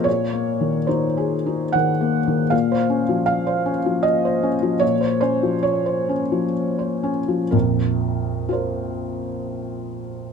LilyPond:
<<
  \new Staff \with { instrumentName = "Felt piano" } { \time 3/4 \key bes \minor \tempo 4 = 71 << { des''4 c''4 ges''4 | f''4 f''4 ees''4 | des''8 c''8 des''4 r4 | bes'2. | } \\ { r2. | r2. | r2. | r4 <f' bes' c''>2 | } >> }
  \new Staff \with { instrumentName = "Felt piano" } { \time 3/4 \key bes \minor \tuplet 3/2 { bes,8 bes8 ees8 ees'8 aes'8 ees'8 ees8 bes8 ees8 } | bes,16 c''16 des'16 f8 c''16 des'16 f8 c''16 des'16 f16 | bes,16 c''16 des'16 f8 c''16 des'16 f8 c''16 des'16 f16 | <bes,, f,>2. | }
>>